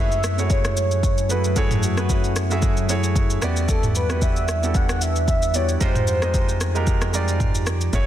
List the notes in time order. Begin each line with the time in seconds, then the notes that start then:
Already playing: F#2 F#3 A3 C#4 E4 F#4 G#4 B4 C#5
0.00 E5
0.12 shaker
0.24 cross-stick, shaker
0.38 A3 E4 F#4 G#4 C#5, shaker
0.50 C#5, kick, shaker
0.65 cross-stick, shaker
0.77 shaker
0.91 shaker
1.03 kick, shaker
1.18 shaker
1.29 A3 E4 F#4 G#4 B4, shaker
1.44 shaker
1.56 A3 E4 F#4 G#4 A4 C#5, kick, shaker
1.71 mid tom, shaker
1.83 F#4, shaker
1.97 A3 E4 F#4 G#4 B4, cross-stick, shaker
2.09 kick, shaker
2.24 shaker
2.36 cross-stick, shaker
2.50 A3 E4 F#4 G#4 E5, shaker
2.62 kick, shaker
2.77 shaker
2.88 A3 E4 F#4 G#4 C#5, shaker
3.03 shaker
3.16 kick, shaker
3.30 shaker
3.41 E2 E3 G3 B3 D4 E4 F#4 G4 D5 F#5, cross-stick, shaker
3.56 shaker
3.69 A4, kick, shaker
3.83 mid tom, shaker
3.95 B4, shaker
4.09 B3 E4 F#4 G4 B4, cross-stick, shaker
4.22 E5, kick, shaker
4.36 shaker
4.48 cross-stick, shaker
4.62 B3 E4 F#4 G4 A4, shaker
4.74 F#5, kick, shaker
4.89 cross-stick, shaker
5.01 E5, shaker
5.16 shaker
5.28 E5, kick, shaker
5.42 shaker
5.54 B3 E4 F#4 G4 C#5 D5, shaker
5.69 shaker
5.80 F2 F3 G#3 C4 D#4 F4 G4 C5, kick, shaker
5.95 mid tom, shaker
6.07 shaker
6.22 G#3 D#4 F4 G4 D#5, cross-stick, shaker
6.34 kick, shaker
6.49 shaker
6.61 cross-stick, shaker
6.75 G#3 D#4 F4 G4 A#4, shaker
6.87 kick, shaker
7.02 cross-stick, shaker
7.13 G#3 D#4 F4 G4 D5, shaker
7.28 shaker
7.40 kick, mid tom, shaker
7.55 shaker
7.67 cross-stick, shaker
7.81 shaker
7.93 F#1 F#3 A3 C#4 E4 F#4 G#4 C#5, kick, shaker